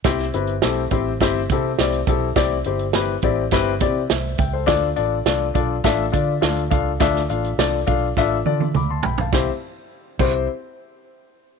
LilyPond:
<<
  \new Staff \with { instrumentName = "Grand piano" } { \time 4/4 \key c \major \tempo 4 = 104 << { r1 | r2. <c'' e''>8 <e'' g''>16 <a' c''>16~ | <a' c''>16 r2. r8. | r2. <b'' d'''>16 <a'' c'''>16 <g'' b''>16 <f'' a''>16~ |
<f'' a''>16 r2. r8. | } \\ { <c' e' g' c''>8 <c' e' g' b'>8 <c' e' g' a'>8 <c' e' g' c''>8 <c' e' g' c''>8 <c' e' g' a'>8 <c' e' g' d''>8 <c' e' g' a'>8 | <c' e' g' d''>8 <c' e' g' c''>8 <c' e' g' b'>8 <c' e' g' d''>8 <c' e' g' b'>8 <c' e' g' d''>8 r4 | <d' f' a' d''>8 <d' f' a' d''>8 <d' f' a' d''>8 <d' f' a' d''>8 <d' f' a' e''>8 <d' f' a' d''>8 <d' f' a' f''>8 <d' f' a' f''>8 | <d' f' a' e''>8 <d' f' a' f''>8 <d' f' a' d''>8 <d' f' a' f''>8 <d' f' a' e''>8 <d' f' a' d''>8 r4 |
<c' e' g' c''>8 r4 <c' e' g' c''>8 r2 | } >> }
  \new Staff \with { instrumentName = "Fingered electric bass" } { \clef bass \time 4/4 \key c \major c,8 g,,8 b,,8 a,,8 g,,8 c8 c,8 b,,8 | c,8 g,,4 a,,8 g,,8 c8 c,8 des,8 | d,8 a,,8 c,8 b,,8 a,,8 d8 d,8 des,8 | d,8 a,,8 c,8 b,,8 a,,8 d8 d,8 b,,8 |
c,8 r4 c,8 r2 | }
  \new DrumStaff \with { instrumentName = "Drums" } \drummode { \time 4/4 <hh bd sn>16 sn16 hh16 hh16 <hh sn>8 <hh bd>8 <hh bd sn>8 <hh bd>8 <hh sn>16 hh16 <hh bd>8 | <hh bd sn>8 hh16 hh16 <hh sn>8 <hh bd>8 <hh bd sn>8 <hh bd>8 <hh sn>8 <hh bd>8 | <hh bd sn>8 hh8 <hh sn>8 <hh bd>8 <hh bd sn>8 <hh bd>8 <hh sn>16 hh16 <hh bd>8 | <hh bd sn>16 sn16 hh16 hh16 <hh sn>8 <hh bd>8 <bd sn>8 tommh16 tommh16 toml8 tomfh16 tomfh16 |
<bd sn>4 r8 <cymc bd>8 r4 r4 | }
>>